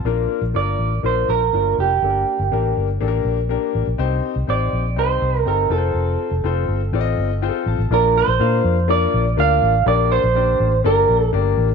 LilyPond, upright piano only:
\new Staff \with { instrumentName = "Upright piano" } { \time 4/4 \key bes \major \tempo 4 = 122 <bes d' f' bes'>8 r8 <bes d' f' a' bes'>8 r8 <bes d' f' bes'>8 r8 <bes d' f' bes'>8 r8 | <bes d' g' a' bes'>8 r8 <bes d' g' bes'>8 r8 <bes d' g' a' bes'>8 r8 <bes d' g' bes'>8 r8 | <c' ees' g' c''>8 r8 <c' ees' g' c''>8 r8 <c' ees' g' c''>8 r8 <c' ees' g' a'>8 <c' f' a' bes' c''>8~ | <c' f' a' bes' c''>8 r8 <c' f' a' c''>8 r8 <c' f' a' d'' ees''>8 r8 <c' f' aes' a' c'' g''>8 a''8 |
<bes d' f' bes' d''>8 r8 <bes d' f' bes' f''>8 r8 <bes d' f' bes' d''>8 r8 <bes d' f' bes' d''>8 r8 | <bes d' g' bes' d''>8 r8 <bes d' g' bes' d''>8 r8 <bes d' g' bes' d''>8 r8 <bes d' g' bes' d''>8 r8 | }